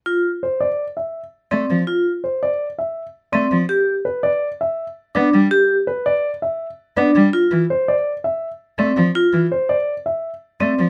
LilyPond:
<<
  \new Staff \with { instrumentName = "Grand piano" } { \time 5/4 \key d \dorian \tempo 4 = 165 r4 c''8 d''8 r8 e''8 r4 d''8 r8 | r4 c''8 d''8 r8 e''8 r4 d''8 r8 | r4 b'8 d''8 r8 e''8 r4 d''8 r8 | r4 b'8 d''8 r8 e''8 r4 d''8 r8 |
r4 c''8 d''8 r8 e''8 r4 d''8 r8 | r4 c''8 d''8 r8 e''8 r4 d''8 r8 | }
  \new Staff \with { instrumentName = "Vibraphone" } { \time 5/4 \key d \dorian f'8 r2. r8 c'8 r8 | f'8 r2. r8 c'8 r8 | g'8 r2. r8 d'8 r8 | g'8 r2. r8 d'8 r8 |
f'8 r2. r8 c'8 r8 | f'8 r2. r8 c'8 r8 | }
  \new Staff \with { instrumentName = "Cello" } { \clef bass \time 5/4 \key d \dorian r1 a8 f8 | r1 a8 f8 | r1 b8 g8 | r1 b8 g8 |
r8 e8 r2. a8 f8 | r8 e8 r2. a8 f8 | }
>>